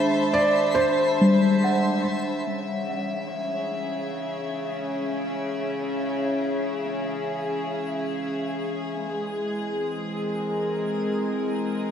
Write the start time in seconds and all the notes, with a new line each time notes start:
Already playing: D#3 G#3 D4 C5 E5 A5 B5
0.34 D5
0.75 C5
1.21 G3
1.64 F#5
2.48 C#3 E3 G#3 D#6
2.72 C#4
3.32 G#4
9.10 G#3
9.60 C4
10.22 A#4